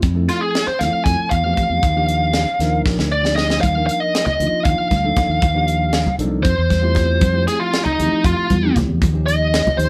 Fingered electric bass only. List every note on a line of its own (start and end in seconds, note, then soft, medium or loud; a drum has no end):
0.03 0.27 F2 loud
0.67 muted fingered electric bass stroke soft
0.81 0.92 E2 medium
0.93 muted fingered electric bass stroke soft
1.06 1.18 F2 medium
1.31 1.56 E2 medium
1.58 muted fingered electric bass stroke soft
1.70 1.82 E2 medium
1.83 2.44 D#2 loud
2.47 muted fingered electric bass stroke soft
2.59 2.86 D#2 medium
2.86 2.98 A#1 medium
2.98 3.60 D2 medium
3.63 3.88 D#2 loud
4.27 muted fingered electric bass stroke soft
4.40 4.52 D2 medium
4.65 4.78 D#2 medium
4.78 muted fingered electric bass stroke soft
4.91 5.16 D2 medium
5.29 5.41 D#2 medium
5.42 6.03 D#2 medium
6.06 muted fingered electric bass stroke soft
6.19 6.44 C2 medium
6.44 6.57 F2 medium
6.58 7.19 E2 medium
7.21 7.46 F2 loud
7.87 muted fingered electric bass stroke soft
8.00 8.12 E2 medium
8.12 muted fingered electric bass stroke soft
8.24 8.37 F2 medium
8.38 muted fingered electric bass stroke soft
8.50 8.75 E2 medium
8.89 9.01 E2 medium
9.02 9.62 D#2 medium
9.78 9.89 D#2 medium